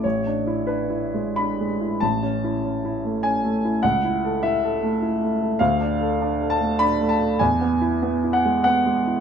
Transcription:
\new Staff \with { instrumentName = "Grand piano" } { \time 3/4 \key a \major \tempo 4 = 99 << { cis''4 b'4 b''4 | a''2 gis''4 | fis''4 e''4 r4 | f''4. a''8 b''8 a''8 |
gis''4. fis''8 fis''4 | } \\ { \tuplet 3/2 { a,,8 d'8 e'8 d'8 e'8 gis8 d'8 gis8 e'8 } | \tuplet 3/2 { a,,8 cis'8 e'8 cis'8 e'8 a8 cis'8 a8 e'8 } | \tuplet 3/2 { cis,8 e'8 a'8 e'8 a'8 a8 e'8 a8 a'8 } | \tuplet 3/2 { d,8 d'8 a'8 d'8 a'8 a8 d'8 a8 a'8 } |
\tuplet 3/2 { e,8 b8 e'8 b8 e'8 gis8 b8 gis8 e'8 } | } >> }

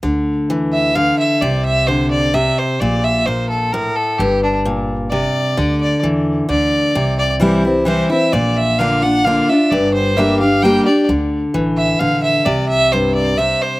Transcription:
<<
  \new Staff \with { instrumentName = "Fiddle" } { \time 3/4 \key d \minor \tempo 4 = 130 r4. e''8 f''8 e''8 | d''8 e''8 c''8 d''8 e''8 c''8 | d''8 e''8 c''8 a'8 bes'8 a'8 | g'8 d'8 r4 d''4~ |
d''8 d''8 r4 d''4~ | d''8 d''8 r4 c''8 e''8 | d''8 e''8 f''8 fis''8 f''8 e''8 | d''8 c''8 e''8 f''8 g''8 d''8 |
r4. e''8 f''8 e''8 | d''8 e''8 c''8 d''8 e''8 c''8 | }
  \new Staff \with { instrumentName = "Steel-string acoustic guitar" } { \clef bass \time 3/4 \key d \minor << { r2. | r2. | r2. | r2. |
r2. | r4 <e g c' e'>8 <c' e'>8 <e g c' e'>8 <c' e'>8 | r4 <d bes d' f'>8 <d' f'>8 <d bes d' f'>8 <d' f'>8 | r4 <g bes d' g'>8 <d' g'>8 <g bes d' g'>8 <d' g'>8 |
r2. | r2. | } \\ { d4 e4 d4 | c4 d4 c4 | bes,4 bes,4 a,4 | g,4 bes,4 c4 |
d4 e4 d4 | c2 r4 | bes,2 r4 | g,2 r4 |
d4 e4 d4 | c4 g,4 c4 | } >> }
  \new Staff \with { instrumentName = "Upright bass" } { \clef bass \time 3/4 \key d \minor d,2. | c,2. | bes,,2. | g,,2. |
d,4 e,4 d,4 | c,2. | bes,,2. | g,,2. |
d,4 a,,4 bes,,4 | c,2. | }
>>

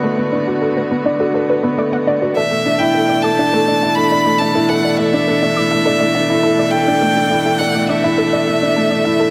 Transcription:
<<
  \new Staff \with { instrumentName = "Violin" } { \time 4/4 \key a \mixolydian \tempo 4 = 103 r1 | e''8. g''8. a''4~ a''16 b''8. a''8 | fis''8 e''2. g''8~ | g''4 fis''8 e''2~ e''8 | }
  \new Staff \with { instrumentName = "Synth arpeggio sound" } { \time 4/4 \key a \mixolydian a'16 r16 b'16 d''16 a'16 b'16 r16 d''16 a'16 b'16 b'16 r16 d''16 fis''16 d''16 b'16 | a'16 r16 d''16 e''16 a'16 d''16 d'''16 e''16 a'16 d''16 e''16 r16 a'16 d''16 e''16 a'16 | a'16 r16 d''16 e''16 a'16 d''16 d'''16 e''16 a'16 d''16 e''16 r16 a'16 d''16 e''16 a'16 | a'16 r16 d''16 e''16 a'16 d''16 d'''16 e''16 a'16 d''16 e''16 r16 a'16 d''16 e''16 a'16 | }
  \new Staff \with { instrumentName = "Grand piano" } { \time 4/4 \key a \mixolydian a16 b16 d'16 fis'16 a'16 a16 b16 d'16 fis'16 a'16 a16 b16 a16 b16 d'16 fis'16 | d''16 a16 d'16 e'16 a'16 d''16 a16 d'16 a16 d'16 e'16 a'16 d''16 a16 d'16 e'16 | a'16 d''16 a16 d'16 a16 d'16 e'16 a'16 d''16 a16 d'16 e'16 a'16 d''16 a16 d'16 | a16 d'16 e'16 a'16 d''16 a16 d'16 e'16 a'16 d''16 a16 d'16 a16 d'16 e'16 a'16 | }
  \new Staff \with { instrumentName = "String quartet" } { \time 4/4 \key a \mixolydian <d a b fis'>1 | <b, e a d' a'>1~ | <b, e a d' a'>1~ | <b, e a d' a'>1 | }
>>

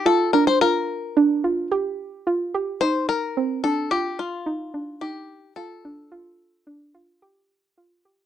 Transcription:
<<
  \new Staff \with { instrumentName = "Five-string banjo" } { \time 5/4 \key c \dorian \tempo 4 = 109 a'8 bes'16 c''16 bes'2 r2 | c''8 bes'4 a'8 g'8 f'4. g'4 | a'1 r4 | }
  \new Staff \with { instrumentName = "Synth arpeggio sound" } { \time 5/4 \key c \dorian f'8 d'8 f'4 d'8 f'8 g'4 f'8 g'8 | ees'4 c'8 d'8 f'4 ees'8 d'8 ees'4 | f'8 d'8 f'4 d'8 f'8 g'4 f'8 g'8 | }
>>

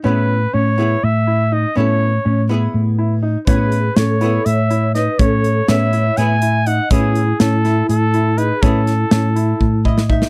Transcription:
<<
  \new Staff \with { instrumentName = "Trumpet" } { \time 7/8 \key a \lydian \tempo 4 = 122 b'4 cis''4 e''4 dis''8 | cis''4. r2 | b'4 cis''4 e''4 dis''8 | cis''4 e''4 gis''4 fis''8 |
gis'4 a'4 a'4 b'8 | a'2~ a'8 r4 | }
  \new Staff \with { instrumentName = "Vibraphone" } { \time 7/8 \key a \lydian r2. r8 | r2. r8 | gis'4 a'4 cis''4 b'8 | a'4 cis''4 e''4 dis''8 |
e'4 e'4 e'4 gis'8 | e'2~ e'8 r4 | }
  \new Staff \with { instrumentName = "Hollow-body jazz guitar" } { \time 7/8 \key a \lydian <b e' gis'>8 r4 <b e' gis'>8 r4. | <b e' a'>8 r4 <b e' gis'>4. r8 | <b e' gis'>8 r4 <b e' gis'>8 r4. | r4 <b e' gis'>8 r8 <b e' gis'>8 r4 |
<b e' gis'>8 r2. | <b e' gis'>8 r2 dis''8 e''8 | }
  \new Staff \with { instrumentName = "Grand piano" } { \time 7/8 \key a \lydian cis'4 cis'8 e'4 e'8 dis'8 | cis'4 cis'8 e'4 e'8 dis'8 | cis'4 cis'8 e'4 e'8 dis'8 | cis'4 cis'8 e'4 e'8 dis'8 |
cis'4 cis'8 e'4 e'8 dis'8 | cis'4 cis'8 e'4 e'8 dis'8 | }
  \new Staff \with { instrumentName = "Fingered electric bass" } { \clef bass \time 7/8 \key a \lydian a,4 a,4 a,4. | a,4 a,4 a,4. | a,4 a,4 a,4. | a,4 a,4 a,4. |
a,4 a,4 a,4. | a,4 a,4 a,4. | }
  \new DrumStaff \with { instrumentName = "Drums" } \drummode { \time 7/8 r4 r4 r4. | r4 r4 r4. | <hh bd>8 hh8 <hh sn>8 hh8 hh8 hh8 <hh sn>8 | <hh bd>8 hh8 <hh sn>8 hh8 hh8 hh8 hh8 |
<hh bd>8 hh8 <hh sn>8 <hh sn>8 hh8 hh8 hh8 | <hh bd>8 <hh sn>8 <hh sn>8 hh8 bd8 bd16 sn16 bd16 sn16 | }
>>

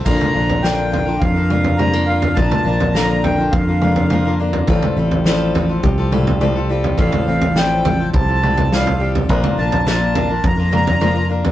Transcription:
<<
  \new Staff \with { instrumentName = "Accordion" } { \time 4/4 \key bes \lydian \tempo 4 = 104 bes''4 g''4 f''4 bes''8 f''8 | a''4 bes''8 g''8 f''4. r8 | r1 | f''4 g''4 a''4 f''8. r16 |
r8 a''4. bes''8 bes''4 r8 | }
  \new Staff \with { instrumentName = "Steel-string acoustic guitar" } { \time 4/4 \key bes \lydian <bes, f bes d' f' bes'>8 <bes d' f' bes'>8 <bes, f bes d' f' bes'>8 <bes d' f' bes'>16 <bes d' f' bes'>8 <bes d' f' bes'>16 <bes d' f' bes'>8 <bes, f bes d' f' bes'>16 <bes d' f' bes'>16 <bes d' f' bes'>8 | <bes, f bes d' f' bes'>8 <bes d' f' bes'>8 <bes, f bes d' f' bes'>8 <bes d' f' bes'>16 <bes d' f' bes'>8 <bes d' f' bes'>16 <bes d' f' bes'>8 <bes, f bes d' f' bes'>16 <bes d' f' bes'>16 <bes d' f' bes'>8 | <a, f g c' f' a'>8 <g c' f' a'>8 <a, f g c' f' a'>8 <g c' f' a'>16 <g c' f' a'>8 <g c' f' a'>16 <g c' f' a'>8 <a, f g c' f' a'>16 <g c' f' a'>16 <g c' f' a'>8 | <a, f g c' f' a'>8 <g c' f' a'>8 <a, f g c' f' a'>8 <g c' f' a'>16 <g c' f' a'>8 <g c' f' a'>16 <g c' f' a'>8 <a, f g c' f' a'>16 <g c' f' a'>16 <g c' f' a'>8 |
<bes, f bes d' f' bes'>8 <bes d' f' bes'>8 <bes, f bes d' f' bes'>8 <bes d' f' bes'>16 <bes d' f' bes'>8 <bes d' f' bes'>16 <bes d' f' bes'>8 <bes, f bes d' f' bes'>16 <bes d' f' bes'>16 <bes d' f' bes'>8 | }
  \new Staff \with { instrumentName = "Steel-string acoustic guitar" } { \time 4/4 \key bes \lydian << { <d bes d' f'>8 d'4. f'4 g16 bes16 f'8 | r8 d'4. f'4 bes8 f'8 | r8 c'4. g'4 g8 g'8 | r8 c'4. g'4 g8 g'8 |
r1 | } \\ { bes,4 d4. f,4. | bes,4 d4. f,4. | a,4 f4. a,4. | a,4 f4. a,4. |
r1 | } >> }
  \new Staff \with { instrumentName = "Fingered electric bass" } { \clef bass \time 4/4 \key bes \lydian bes,,16 r16 bes,,4. f,2 | bes,,16 r16 bes,,4. f,2 | a,,16 r16 a,,4. c,2 | a,,16 r16 a,,4. c,2 |
bes,,16 r16 bes,,4. f,2 | }
  \new DrumStaff \with { instrumentName = "Drums" } \drummode { \time 4/4 <cymc bd tomfh>16 <tomfh toml>8 tomfh16 sn8 tomfh8 <bd tomfh>8 toml16 tomfh16 toml8. tomfh16 | <bd tomfh>16 <tomfh toml>8 tomfh16 sn8 tomfh8 <bd tomfh>8 toml16 tomfh16 toml8. tomfh16 | <bd tomfh>16 <tomfh toml>8 tomfh16 sn8 tomfh8 <bd tomfh>8 toml16 tomfh16 toml8. tomfh16 | <bd tomfh>16 <tomfh toml>8 tomfh16 sn8 <tomfh toml>8 <bd tomfh>8 toml16 tomfh16 sn16 tomfh8 tomfh16 |
<bd tomfh>16 <tomfh toml>8 tomfh16 sn8 tomfh8 <bd tomfh>8 toml16 tomfh16 toml8. tomfh16 | }
>>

